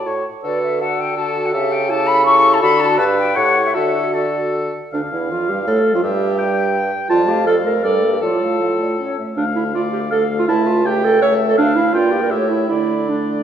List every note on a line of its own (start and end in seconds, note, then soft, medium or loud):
0.00 0.24 F#4 medium
0.00 0.13 A5 medium
0.06 0.25 A2 medium
0.06 0.26 E4 medium
0.06 0.25 C#5 medium
0.42 1.55 D3 medium
0.42 0.79 F#4 medium
0.42 0.78 A4 medium
0.42 0.82 B4 medium
0.42 0.61 D5 medium
0.62 0.82 E5 medium
0.81 1.17 F#4 medium
0.81 1.16 A4 medium
0.81 1.01 F#5 medium
0.99 1.17 G5 medium
1.16 1.55 F#4 medium
1.16 1.53 F#4 medium
1.16 1.53 A4 medium
1.16 1.47 A5 medium
1.45 1.52 F#5 medium
1.53 2.62 C#3 medium
1.53 1.91 G4 medium
1.53 1.90 G4 medium
1.53 1.90 A4 medium
1.53 1.73 E5 medium
1.71 1.91 G5 medium
1.89 2.26 E4 medium
1.89 2.26 G4 medium
1.89 2.26 A4 medium
1.89 2.08 A5 loud
2.06 2.24 B5 loud
2.25 2.64 E4 medium
2.25 2.64 G4 medium
2.25 2.61 A4 medium
2.25 2.55 C#6 loud
2.53 2.61 A5 loud
2.61 3.00 D3 medium
2.61 3.01 F#4 medium
2.61 3.00 A4 medium
2.61 2.81 B5 loud
2.79 2.97 A5 loud
2.98 3.35 G2 loud
2.98 3.36 G4 medium
2.98 3.37 B4 medium
2.98 3.04 A5 loud
3.16 3.37 G5 medium
3.35 3.74 A2 medium
3.35 3.76 E4 medium
3.35 3.76 G4 medium
3.35 3.76 C#5 medium
3.35 3.64 F#5 loud
3.65 3.73 E5 medium
3.74 4.72 D3 medium
3.74 4.74 F#4 medium
3.74 4.15 F#4 medium
3.74 4.12 A4 medium
3.74 4.15 E5 medium
4.13 4.73 F#4 medium
4.13 4.72 A4 medium
4.13 4.54 D5 medium
4.93 5.02 D2 medium
4.93 5.10 D3 medium
4.93 5.11 D4 medium
4.93 5.02 D4 medium
4.93 6.00 F5 medium
5.12 5.33 E2 medium
5.12 5.32 E3 medium
5.12 5.18 E4 medium
5.12 5.33 E4 medium
5.30 5.51 F2 medium
5.30 5.49 F3 medium
5.30 5.36 F4 medium
5.30 5.51 F4 medium
5.48 5.66 G2 medium
5.48 5.58 G3 medium
5.48 5.54 G4 medium
5.48 5.67 G4 medium
5.67 5.79 A2 medium
5.67 5.96 A3 medium
5.67 5.94 A4 medium
5.94 5.99 F2 medium
5.94 6.05 F3 medium
5.94 6.03 F4 medium
5.94 6.00 F4 medium
6.03 6.90 G2 medium
6.03 6.92 G3 medium
6.03 6.90 G4 medium
6.03 6.38 E5 medium
6.39 7.08 G5 medium
7.09 7.80 F2 medium
7.09 7.29 F3 medium
7.09 7.30 F4 loud
7.09 7.30 D5 medium
7.09 7.45 A5 medium
7.27 7.47 A3 medium
7.27 7.46 G4 medium
7.27 7.49 F5 medium
7.46 7.66 F3 medium
7.46 7.55 A4 loud
7.46 7.67 D5 medium
7.46 7.83 F5 medium
7.65 7.83 A3 medium
7.65 7.85 A#4 medium
7.65 7.83 F5 medium
7.83 8.24 G2 medium
7.83 8.04 G3 medium
7.83 8.12 A4 medium
7.83 8.05 D5 medium
7.83 8.20 D5 medium
8.03 8.21 A#3 medium
8.03 8.22 E5 soft
8.13 8.17 G4 medium
8.21 9.18 A2 medium
8.21 8.42 F3 medium
8.21 8.98 F4 medium
8.21 9.16 A4 medium
8.21 8.44 D5 soft
8.41 8.62 A3 soft
8.41 8.60 F5 soft
8.60 8.81 F3 soft
8.60 8.66 F5 medium
8.79 8.98 A3 soft
8.79 8.87 D5 medium
8.99 9.20 C#4 soft
8.99 9.18 C#5 medium
9.18 9.37 A3 soft
9.18 9.25 E5 soft
9.37 10.44 D2 medium
9.37 9.72 A3 medium
9.37 9.46 D4 medium
9.37 9.72 F5 medium
9.37 9.73 F5 medium
9.56 9.64 E4 medium
9.74 10.11 A3 medium
9.74 9.83 F4 medium
9.74 10.10 D5 medium
9.74 10.11 F5 medium
9.92 10.01 G4 medium
10.11 10.48 A3 medium
10.11 10.24 A4 medium
10.11 10.47 F5 medium
10.11 10.48 F5 medium
10.39 10.43 F4 medium
10.48 11.56 C#2 medium
10.48 10.85 A3 medium
10.48 10.69 E4 loud
10.48 10.85 E5 medium
10.48 10.87 A5 medium
10.67 10.87 F4 medium
10.85 11.21 A3 medium
10.85 11.06 G4 loud
10.85 11.21 E5 medium
10.85 11.24 G5 medium
11.04 11.22 A4 loud
11.22 11.57 A3 medium
11.22 11.34 C#5 loud
11.22 11.57 E5 medium
11.22 11.58 E5 medium
11.49 11.57 A4 medium
11.58 11.96 D2 medium
11.58 11.92 A3 medium
11.58 11.78 D4 loud
11.58 11.93 F5 medium
11.58 11.92 F5 medium
11.76 11.95 E4 medium
11.94 12.33 G2 medium
11.94 12.32 A#3 medium
11.94 12.13 F4 loud
11.94 12.31 D5 medium
11.94 12.32 G5 medium
12.12 12.23 G4 medium
12.22 12.32 A#4 medium
12.31 12.69 A2 medium
12.31 12.69 A3 medium
12.31 12.52 G4 medium
12.31 12.69 C#5 medium
12.31 12.69 E5 medium
12.50 12.68 E4 medium
12.69 13.43 D3 medium
12.69 13.08 A3 medium
12.69 13.11 E4 medium
12.69 13.09 D5 medium
12.69 13.43 D5 medium
13.08 13.43 A3 soft
13.08 13.43 D4 medium
13.08 13.43 D5 medium